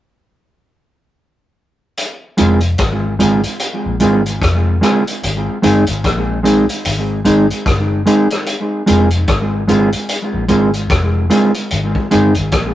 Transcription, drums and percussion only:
1.97 closed hi-hat
2.38 closed hi-hat
2.60 closed hi-hat
2.78 kick, cross-stick, closed hi-hat
3.20 closed hi-hat
3.43 closed hi-hat
3.59 closed hi-hat
4.00 closed hi-hat
4.26 closed hi-hat
4.42 kick, cross-stick, closed hi-hat
4.83 cross-stick, closed hi-hat
5.07 closed hi-hat
5.23 closed hi-hat
5.63 closed hi-hat
5.87 closed hi-hat
6.04 kick, cross-stick, closed hi-hat
6.45 closed hi-hat
6.69 closed hi-hat
6.85 closed hi-hat
7.25 closed hi-hat
7.50 closed hi-hat
7.66 kick, cross-stick, closed hi-hat
8.06 closed hi-hat
8.30 cross-stick, closed hi-hat
8.46 closed hi-hat
8.87 closed hi-hat
9.11 closed hi-hat
9.28 kick, cross-stick, closed hi-hat
9.68 closed hi-hat
9.92 closed hi-hat
10.09 closed hi-hat
10.48 closed hi-hat
10.73 closed hi-hat
10.90 kick, cross-stick, closed hi-hat
11.30 closed hi-hat
11.54 closed hi-hat
11.71 closed hi-hat
11.95 kick
12.11 closed hi-hat
12.34 closed hi-hat
12.52 kick, cross-stick, closed hi-hat

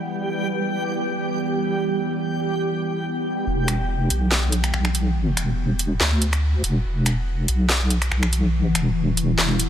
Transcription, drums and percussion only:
3.68 finger snap, closed hi-hat
4.10 closed hi-hat
4.31 snare
4.52 closed hi-hat
4.64 finger snap, closed hi-hat
4.74 finger snap
4.85 finger snap
4.95 closed hi-hat
5.37 finger snap, closed hi-hat
5.79 closed hi-hat
6.00 snare
6.22 closed hi-hat
6.33 finger snap, closed hi-hat
6.64 closed hi-hat
7.06 finger snap, closed hi-hat
7.48 closed hi-hat
7.69 snare
7.91 closed hi-hat
8.02 finger snap, closed hi-hat
8.12 finger snap
8.23 finger snap
8.33 closed hi-hat
8.75 finger snap, closed hi-hat
9.17 closed hi-hat
9.38 snare
9.60 closed hi-hat

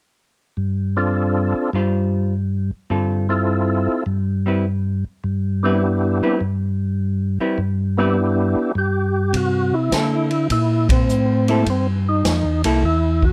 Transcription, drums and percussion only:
9.33 kick, ride
9.92 kick, snare, hi-hat pedal, ride
10.31 ride
10.50 kick, ride
10.89 kick, ride
11.09 hi-hat pedal
11.48 ride
11.66 kick, ride
12.25 kick, snare, hi-hat pedal, ride
12.64 ride
12.83 kick
13.22 kick

